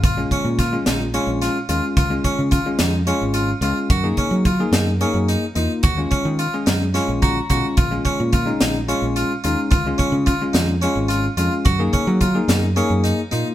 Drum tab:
HH |xxxxxxx|xxxxxxx|xxxxxxx|xxxxxxx|
SD |--oo-o-|---o---|---o---|---oo--|
BD |ooo----|ooo----|ooo----|oo---oo|

HH |xxxxxxx|xxxxxxx|xxxxxxx|
SD |---o---|---o---|---o---|
BD |ooo----|ooo----|ooo----|